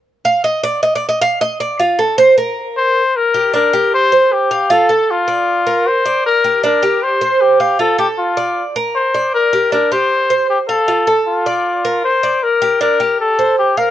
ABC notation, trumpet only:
X:1
M:4/4
L:1/8
Q:1/4=155
K:Gm
V:1 name="Trumpet"
z8 | z6 c2 | B2 B2 c2 G2 | A2 F4 c2 |
B2 B2 c2 G2 | A G F3 z c2 | B2 B c3 G A- | A2 F4 c2 |
B2 B2 A2 G B |]